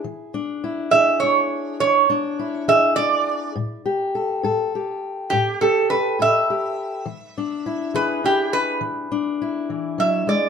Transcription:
<<
  \new Staff \with { instrumentName = "Resonator guitar played with a steel bar" } { \time 12/8 \key e \mixolydian \tempo 4. = 68 r4. e''8 cis''4 cis''4. e''8 d''4 | r2. g'8 a'8 b'8 e''4.~ | e''4. b'8 g'8 b'8 r2 e''8 d''8 | }
  \new Staff \with { instrumentName = "Steel-string acoustic guitar" } { \time 12/8 \key e \mixolydian << { gis'8 d'8 e'8 gis'8 d'4. d'8 e'8 gis'8 d'4 | r8 g'8 a'8 a'8 g'4. g'8 a'8 a'8 g'4 | r8 d'8 e'8 gis'8 d'4. d'8 e'2 | } \\ { e4 r8 e4 r8 e4 r8 e4 r8 | a,4 r8 a,4 r8 a,4 r8 a,4 r8 | e4 r8 e4 r8 e4 r8 e8 fis8 gis8 | } >> }
>>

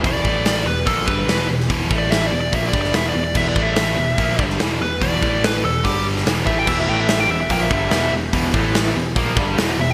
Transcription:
<<
  \new Staff \with { instrumentName = "Lead electric guitar" } { \time 4/4 \key e \minor \tempo 4 = 145 d''4. b'8 a'8 b'4 r8 | \tuplet 3/2 { r4 d''8 e''8 d''8 d''8 e''8 d''8 d''8 e''8 d''8 d''8 } | \tuplet 3/2 { e''8 d''8 e''8~ } e''4.~ e''16 r8. b'8 | d''4 b'8 a'8 g'8 r4 e''16 g''16 |
e''16 e''16 g''16 e''16 e''16 g''16 e''16 e''16 g''16 e''16 e''4 r8 | r2. r8 e''16 g''16 | }
  \new Staff \with { instrumentName = "Distorted electric guitar" } { \clef bass \time 4/4 \key e \minor <e, b, e>8 <a, e a>4 <e, b,>8 <ais, f ais>8 <g, d g>8 <e, b, e>8 <e, b,>8 | <e, b, e>8 <a, e a>4 <e, b,>8 <ais, f ais>8 <g, d g>8 <e, b, e>8 <e, b,>8 | <e, b, e>8 <a, e a>4 <e, b,>8 <ais, f ais>8 <g, d g>8 <e, b, e>8 <e, b,>8 | <e, b, e>8 <a, e a>4 <e, b,>8 <g, d g>4 <e, b, e>8 <a, e a>8 |
<e, b, e>8 <a, e a>4 <e, b,>8 <ais, f ais>8 <g, d g>8 <e, b, e>8 <e, b,>8 | <e, b, e>8 <a, e a>4 <e, b,>8 <ais, f ais>8 <g, d g>8 <e, b, e>8 <e, b,>8 | }
  \new Staff \with { instrumentName = "Overdriven electric guitar" } { \clef bass \time 4/4 \key e \minor <e, b, e>8 <a, e a>4 <e, b,>8 <ais, f ais>8 <g, d g>8 <e, b, e>8 <e, b,>8 | <e, b, e>8 <a, e a>4 <e, b,>8 <ais, f ais>8 <g, d g>8 <e, b, e>8 <e, b,>8 | <e, b, e>8 <a, e a>4 <e, b,>8 <ais, f ais>8 <g, d g>8 <e, b, e>8 <e, b,>8 | <e, b, e>8 <a, e a>4 <e, b,>8 <g, d g>4 <e, b, e>8 <a, e a>8 |
<e, b, e>8 <a, e a>4 <e, b,>8 <ais, f ais>8 <g, d g>8 <e, b, e>8 <e, b,>8 | <e, b, e>8 <a, e a>4 <e, b,>8 <ais, f ais>8 <g, d g>8 <e, b, e>8 <e, b,>8 | }
  \new Staff \with { instrumentName = "Overdriven electric guitar" } { \clef bass \time 4/4 \key e \minor r1 | r1 | r1 | r1 |
<e, b, e>8 <a, e a>4 <e, b,>8 <ais, f ais>8 <g, d g>8 <e, b, e>8 <e, b,>8 | <e, b, e>8 <a, e a>4 <e, b,>8 <ais, f ais>8 <g, d g>8 <e, b, e>8 <e, b,>8 | }
  \new Staff \with { instrumentName = "Picked electric bass" } { \clef bass \time 4/4 \key e \minor e,,8 a,,4 e,,8 ais,,8 g,,8 e,,8 e,,8 | e,,8 a,,4 e,,8 ais,,8 g,,8 e,,8 e,,8 | e,,8 a,,4 e,,8 ais,,8 g,,8 e,,8 e,,8 | e,,8 a,,4 e,,8 g,,4 e,,8 a,,8 |
e,,8 a,,4 e,,8 ais,,8 g,,8 e,,8 e,,8 | e,,8 a,,4 e,,8 ais,,8 g,,8 e,,8 e,,8 | }
  \new DrumStaff \with { instrumentName = "Drums" } \drummode { \time 4/4 <hho bd>8 bd8 <hho sn>4 <hho bd>8 bd8 <hho sn>8. sn16 | <hho bd>8 bd8 <hho sn>4 <hho bd>8 bd16 sn16 <hho sn>4 | <cymc bd>8 bd8 <hho sn>4 <hho bd>8 bd16 sn16 <hho sn>4 | <hho bd>8 bd8 <hho sn>4 <hho bd>8. sn16 <hho sn>8 bd8 |
<cymc bd>4 <hho sn>4 <hho bd>8 bd8 <hho sn>4 | <hho bd>8 bd8 <hho sn>4 <hho bd>8 bd8 <hho sn>4 | }
>>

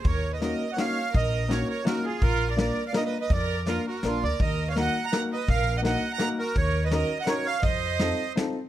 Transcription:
<<
  \new Staff \with { instrumentName = "Accordion" } { \time 3/4 \key ees \minor \tempo 4 = 166 des''8. ees''16 ees''8. ges''16 f''4 | ees''4 des''8 des''8 bes'8 aes'8 | bes'8. d''16 d''8. f''16 \tuplet 3/2 { ees''8 ees''8 ees''8 } | d''4 bes'8 bes'8 f'8 d''8 |
ees''8. f''16 ges''8. bes''8 r16 ees''8 | f''8. ges''16 ges''8. bes''8 r16 bes'8 | des''8. ees''16 ees''8. ges''16 des''8 f''8 | ees''2 r4 | }
  \new Staff \with { instrumentName = "Violin" } { \time 3/4 \key ees \minor bes'8. ces''16 bes'8. ees''16 des''4 | bes'4 bes'8 bes'8 ges'8 f'8 | f'8. bes'16 bes'8. d''16 \tuplet 3/2 { bes'8 ces''8 ces''8 } | bes'4 f'8 ges'8 d'8 bes'8 |
bes'8. des''16 ees''8. ges''8 r16 ces''8 | bes'8. ees''16 ees''8. ges''8 r16 ges'8 | bes'8. ces''16 bes'8. ees''16 bes'8 des''8 | c''2 r4 | }
  \new Staff \with { instrumentName = "Upright piano" } { \time 3/4 \key ees \minor r4 <bes des' ees' ges'>8 r8 <bes des' ees' ges'>8 r8 | r4 <bes des' ees' ges'>8 r8 <bes des' ees' ges'>8 r8 | r4 <bes d' f' bes'>8 r8 <bes d' f' bes'>8 r8 | r4 <bes d' f' bes'>8 r8 <bes d' f' bes'>8 r8 |
r4 <bes ees' ges' bes'>8 r8 <bes ees' ges' bes'>8 r8 | r4 <bes ees' ges' bes'>8 r8 <bes ees' ges' bes'>8 r8 | r4 <des' ees' ges' bes'>8 r8 <des' ees' ges' bes'>8 r8 | r4 <c' ees' f' a'>8 r8 <c' ees' f' a'>8 r8 | }
  \new Staff \with { instrumentName = "Upright bass" } { \clef bass \time 3/4 \key ees \minor ees,2 r4 | bes,,2 r4 | bes,,2 r4 | f,2 bes,,8 d,8 |
ees,2 r4 | bes,,2 r4 | ees,2 r4 | f,2 r4 | }
  \new DrumStaff \with { instrumentName = "Drums" } \drummode { \time 3/4 <hh bd>4 <hh sn>4 <hh sn>4 | <hh bd>4 <hh sn>4 <hh sn>4 | <hh bd>4 <hh sn>4 <hh sn>4 | <hh bd>4 <hh sn>4 <hh sn>4 |
<hh bd>4 <hh sn>4 <hh sn>4 | <hh bd>4 <hh sn>4 <hh sn>4 | <hh bd>4 <hh sn>4 <hh sn>4 | <hh bd>4 <hh sn>4 <hh sn>4 | }
>>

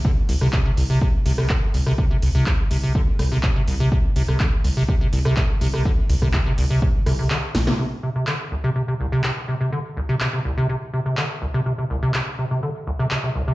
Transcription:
<<
  \new Staff \with { instrumentName = "Acid bass" } { \clef bass \time 4/4 \key d \minor \tempo 4 = 124 d16 r16 c,16 c16 c16 c16 c,16 c16 r8 c16 c16 d16 r16 c,16 c16 | c16 c16 c,16 c16 c16 r16 c16 c16 d16 r16 c,16 c16 c16 c16 c,16 c16 | r8 c16 c16 d16 r16 c,16 c16 c16 c16 c,16 c16 c16 r16 c16 c16 | d16 r16 c,16 c16 c16 c16 c,16 c16 r8 c16 c16 d16 r16 c,16 c16 |
c16 r16 c16 c16 d16 r16 c,16 c16 c16 c16 c,16 c16 c16 r16 c16 c16 | d16 r16 c,16 c16 c16 c16 c,16 c16 c16 r16 c16 c16 d16 r16 c,16 c16 | c16 c16 c,16 c16 c16 r16 c16 c16 d16 r16 c,16 c16 c16 c16 c,16 c16 | }
  \new Staff \with { instrumentName = "Analog synth bass" } { \clef bass \time 4/4 \key d \minor r8 c,16 c,16 r8 c,16 r8. c,16 r8. c,16 r16 | r8 c,16 c,16 r8 c,16 r8. c,16 r8. c,16 r16 | r8 c,16 c,16 r8 c,16 r8. c,16 r8. c,16 r16 | r8 c,16 c,16 r8 c,16 r8. c,16 r8. bes,,16 r16 |
r1 | r1 | r1 | }
  \new DrumStaff \with { instrumentName = "Drums" } \drummode { \time 4/4 bd8 hho16 ss16 <hc bd>8 hho8 bd8 hho16 ss16 <hc bd>8 hho16 ss16 | bd8 hho8 <hc bd>8 hho8 bd8 <hho ss>8 <hc bd>8 hho8 | bd8 hho16 ss16 <hc bd>8 hho8 bd8 hho16 ss16 <hc bd>8 hho16 ss16 | bd8 hho16 <bd ss>16 <hc bd>8 hho8 bd8 <hho ss>8 hc8 <hho sn>16 sn16 |
r4 hc4 r4 hc4 | r4 hc4 r4 hc4 | r4 hc4 r4 hc4 | }
>>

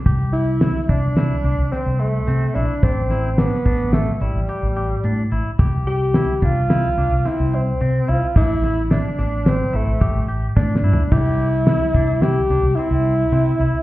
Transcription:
<<
  \new Staff \with { instrumentName = "Clean electric guitar" } { \time 5/4 \key c \major \tempo 4 = 108 g'4 e'8 d'8 e'8 d'8 c'4 c'8 e'8 | d'8 e'8 d'8 d'4 e'8 g'8 g'8 d'8 e'8 | g'4 e'8 d'8 e'8 d'8 c'4 c'8 e'8 | d'8 e'8 d'8 d'4 e'8 g'8 g'8 d'8 e'8 |
g'4 e'8 d'8 e'8 d'8 c'4 c'8 e'8 | }
  \new Staff \with { instrumentName = "Tenor saxophone" } { \time 5/4 \key c \major r8 e'4 d'4. c'8 a4 d'8 | c'4 b4 a16. a32 g2 r8 | r8 g'4 f'4. e'8 c'4 f'8 | e'4 d'4 c'8 a4 r8 d'4 |
e'2 g'4 e'2 | }
  \new Staff \with { instrumentName = "Fretless electric bass" } { \clef bass \time 5/4 \key c \major c,4. c,4 c,16 c,16 r16 c,8. c8 bes,,16 r16 | a,,4. a,,4 a,,16 a,,16 r16 a,,8. a,8 a,,16 r16 | c,4. c,4 c,16 c,16 r16 c,8. c8 c,16 r16 | a,,4. a,,4 a,,16 a,,16 r16 a,,8. a,8 g,16 r16 |
c,4. c,4 c,16 c,16 r16 c,8. c8 c,16 r16 | }
  \new DrumStaff \with { instrumentName = "Drums" } \drummode { \time 5/4 <hh bd>8 hh8 <hh sn>8 <hh bd sn>8 <hh sn>8 hh8 <hh sn>8 hh8 <hh sn>8 hh8 | <hh bd>8 <hh sn>8 <hh sn>8 <hh bd>8 <hh sn>8 hh8 hh8 hh8 hh8 hh8 | <hh bd>8 hh8 <hh sn>8 <hh bd sn>8 <hh sn>8 hh8 <hh sn>8 hh8 hh8 hh8 | <hh bd>8 <hh sn>8 <hh sn>8 <hh sn>8 <hh sn>8 hh8 <hh bd>8 hh8 \tuplet 3/2 { <bd sn>8 sn8 tomfh8 } |
<cymc hh bd>8 hh8 <hh sn>8 <hh bd>8 <hh sn>8 hh8 hh8 hh8 hh8 hh8 | }
>>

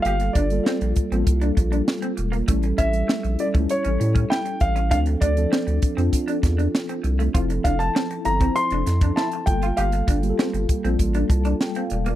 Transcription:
<<
  \new Staff \with { instrumentName = "Grand piano" } { \time 4/4 \key g \dorian \tempo 4 = 99 f''8 d''4 r2 r8 | r8 e''4 d''8 cis''4 g''8 f''8 | f''8 d''4 r2 r8 | r8 f''16 a''8. bes''8 c'''4 a''8 g''8 |
f''4 r2. | }
  \new Staff \with { instrumentName = "Tine electric piano" } { \time 4/4 \key g \dorian << { r1 | r1 | r1 | r1 |
r2 r8 a''8 g''16 f''16 d''8 | } \\ { <g bes f' a'>8 r16 <g bes f' a'>8. r16 <g bes f' a'>4.~ <g bes f' a'>16 r8 | <g cis' e' a'>4~ <g cis' e' a'>16 r16 <g cis' e' a'>16 <g cis' e' g' a'>4.~ <g cis' e' g' a'>16 r8 | <f c' d' a'>8. <f c' d' a'>8. r16 <c' d' f' a'>4.~ <c' d' f' a'>16 r8 | <f c' e' a'>4~ <f c' e' a'>16 r16 <f c' e' a'>16 <f c' e' c''>4.~ <f c' e' c''>16 <g bes f' a'>8~ |
<g bes f' a'>8 r16 <g bes f' g' a'>8. r16 <g bes f' a'>4.~ <g bes f' a'>16 r8 | } >> }
  \new Staff \with { instrumentName = "Clean electric guitar" } { \time 4/4 \key g \dorian g'16 r16 d'16 r16 c'16 r8 c'16 r16 d'16 r16 d'16 r16 c'16 r16 bes16 | a16 r16 cis'16 r16 a16 r8 a16 r16 cis'16 r16 cis'16 e'16 r8 cis'16 | d'16 r16 d'16 r16 c'16 r8 c'16 r16 d'16 r16 d'16 r16 c'16 r16 a16 | f'16 r16 d'16 r16 c'16 r8 c'16 r16 d'16 r16 d'16 e'16 r8 f'16 |
g'16 r16 d'16 r16 c'16 r8 c'16 r16 d'16 r16 d'16 r16 c'16 r16 bes16 | }
  \new Staff \with { instrumentName = "Sub bass" } { \clef bass \time 4/4 \key g \dorian g,,8 g,,8 r16 bes,,16 r16 a,,16 c,8 bes,,8 r8 e,,8 | a,,8 a,,8 r16 bes,,16 r16 cis,16 r16 a,,16 a,8 r8 a,,8 | d,8 d,8 r16 d,16 r16 f,16 r8 e,8 r8 c,8 | f,,8 f,,8 r8 g,,8 r16 f,,16 f,8 r8 g,,8 |
g,,8 g,,8 r16 g,,16 r16 bes,,16 a,,8 c,8 r8 e,,8 | }
  \new DrumStaff \with { instrumentName = "Drums" } \drummode { \time 4/4 hh16 hh16 <hh bd>16 hh16 sn16 hh16 <hh bd>16 hh16 <hh bd>16 hh16 <hh bd>16 hh16 sn16 hh16 hh16 hh16 | <hh bd>16 hh16 <hh bd>16 hh16 sn16 hh16 hh16 <hh bd>16 hh16 hh16 hh16 <hh bd>16 sn16 hh16 <hh bd>16 hh16 | <hh bd>16 hh16 <hh bd>16 hh16 sn16 hh16 <hh bd>16 hh16 <hh bd>16 hh16 <hh bd sn>16 hh16 sn16 hh16 hh16 hh16 | <hh bd>16 hh16 <hh bd>16 hh16 sn16 hh16 hh16 <hh bd>16 hh16 hh16 <hh sn>16 <hh bd>16 sn16 hh16 <hh bd>16 hh16 |
hh16 hh16 <hh bd>16 hh16 sn16 hh16 <hh bd>16 hh16 <hh bd>16 hh16 <hh bd>16 hh16 sn16 hh16 hh16 hh16 | }
>>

